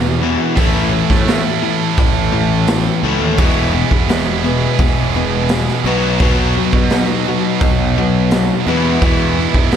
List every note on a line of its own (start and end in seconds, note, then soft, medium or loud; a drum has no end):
0.00 0.19 E2 medium
0.00 0.35 E2 medium
0.00 0.19 B2 medium
0.00 0.20 B2 medium
0.00 0.56 E3 loud
0.00 0.20 G#3 medium
0.00 0.21 B3 medium
0.00 0.58 E4 medium
0.22 0.55 E2 medium
0.22 0.56 B2 medium
0.22 0.56 E3 medium
0.56 1.02 A1 medium
0.56 3.36 A2 medium
0.56 0.91 A2 medium
0.56 3.37 E3 medium
0.56 0.91 E3 medium
0.56 3.37 A3 medium
0.56 0.91 A3 medium
0.56 3.38 C#4 medium
0.56 3.38 E4 loud
0.56 kick loud
0.56 open hi-hat medium
0.92 1.24 A2 medium
0.92 1.24 E3 medium
1.10 1.40 A2 medium
1.10 kick medium
1.10 snare soft
1.28 1.60 A2 medium
1.28 1.60 E3 medium
1.28 snare loud
1.28 open hi-hat soft
1.62 1.94 A2 medium
1.62 1.94 E3 medium
1.98 2.88 A1 medium
1.98 2.30 A2 medium
1.98 2.30 E3 medium
1.98 kick loud
1.98 open hi-hat soft
2.32 2.65 A2 medium
2.32 2.65 E3 medium
2.67 3.00 A2 medium
2.67 3.01 E3 medium
2.67 snare loud
2.67 open hi-hat medium
3.03 3.19 C#2 medium
3.03 3.37 A2 medium
3.03 3.37 E3 medium
3.03 3.37 A3 medium
3.21 3.37 D#2 medium
3.37 3.83 E1 medium
3.37 4.09 E2 medium
3.37 3.72 E2 medium
3.37 4.09 B2 medium
3.37 3.72 B2 medium
3.37 4.07 E3 medium
3.37 3.73 E3 medium
3.37 4.08 G#3 medium
3.37 4.10 B3 medium
3.37 5.84 E4 medium
3.37 4.10 G#4 medium
3.37 kick loud
3.37 open hi-hat soft
3.74 4.06 E2 medium
3.74 4.06 B2 medium
3.91 4.66 E1 medium
3.91 kick medium
4.08 4.41 E2 medium
4.08 4.41 B2 medium
4.08 4.44 E3 medium
4.08 4.45 G#3 medium
4.08 4.44 B3 medium
4.08 4.43 G#4 medium
4.08 snare loud
4.08 open hi-hat soft
4.44 4.76 E2 medium
4.44 4.77 B2 medium
4.44 4.78 E3 medium
4.44 4.79 G#3 soft
4.44 4.80 B3 medium
4.44 4.80 G#4 medium
4.78 5.69 E1 medium
4.78 5.12 E2 medium
4.78 5.12 B2 medium
4.78 5.15 E3 medium
4.78 5.14 G#3 medium
4.78 5.13 B3 medium
4.78 5.12 G#4 medium
4.78 kick loud
4.78 open hi-hat soft
5.13 5.47 E2 medium
5.13 5.48 B2 medium
5.13 5.48 E3 soft
5.13 5.49 G#3 medium
5.13 5.50 B3 medium
5.13 5.50 G#4 medium
5.49 5.82 E2 medium
5.49 5.83 B2 medium
5.49 5.85 E3 medium
5.49 5.86 G#3 medium
5.49 5.85 B3 medium
5.49 5.85 G#4 medium
5.49 snare loud
5.49 open hi-hat medium
5.68 snare soft
5.84 6.59 B1 loud
5.84 6.19 B2 medium
5.84 6.92 B2 medium
5.84 6.89 F#3 medium
5.84 6.19 F#3 medium
5.84 6.91 B3 medium
5.84 6.20 B3 medium
5.84 6.91 D#4 medium
5.84 6.91 F#4 medium
6.20 6.54 B2 medium
6.20 6.54 F#3 medium
6.20 6.55 B3 medium
6.20 kick loud
6.20 open hi-hat medium
6.58 6.89 B2 medium
6.58 6.88 F#3 medium
6.73 7.03 B2 medium
6.73 kick medium
6.90 7.24 B2 medium
6.90 7.26 F#3 medium
6.90 7.24 F#3 medium
6.90 7.27 B3 medium
6.90 7.26 D#4 medium
6.90 7.24 F#4 medium
6.90 snare medium
6.90 open hi-hat soft
7.25 7.59 B2 medium
7.25 7.59 F#3 medium
7.25 7.60 B3 soft
7.25 7.62 D#4 medium
7.25 7.61 F#4 medium
7.61 8.51 B1 medium
7.61 7.94 B2 medium
7.61 7.97 F#3 medium
7.61 7.94 F#3 medium
7.61 7.97 B3 medium
7.61 7.97 D#4 medium
7.61 7.95 F#4 medium
7.61 kick loud
7.61 open hi-hat soft
7.96 8.29 B2 medium
7.96 8.29 F#3 medium
7.96 8.31 B3 soft
7.96 8.31 D#4 medium
7.96 8.32 F#4 medium
8.31 8.64 B2 medium
8.31 8.67 F#3 medium
8.31 8.64 F#3 medium
8.31 8.66 B3 medium
8.31 8.67 D#4 medium
8.31 8.66 F#4 medium
8.31 snare loud
8.31 open hi-hat soft
8.66 8.97 E2 medium
8.66 9.01 E2 medium
8.66 9.73 E2 medium
8.66 9.73 B2 medium
8.66 9.01 B2 medium
8.66 9.70 E3 medium
8.66 9.01 E3 medium
8.66 9.72 G#3 medium
8.66 9.73 B3 medium
8.66 9.72 E4 medium
9.02 9.47 E2 medium
9.02 9.36 E2 medium
9.02 9.36 B2 medium
9.02 9.37 E3 medium
9.02 kick loud
9.02 open hi-hat soft
9.39 9.70 E2 medium
9.39 9.70 B2 medium
9.54 9.77 E2 medium
9.54 kick medium
9.72 9.77 E3 medium
9.72 9.77 G#3 medium
9.72 snare loud
9.72 open hi-hat soft